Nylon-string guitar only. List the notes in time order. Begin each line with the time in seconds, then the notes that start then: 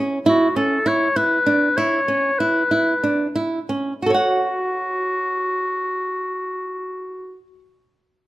Already playing: C#4
0.26 E4
0.56 C#4
0.86 E4
1.16 E4
1.46 D4
1.78 E4
2.08 C#4
2.40 E4
2.71 E4
3.04 D4
3.36 E4
3.69 C#4
4.02 F#4 A4
4.10 C#5
4.14 F#5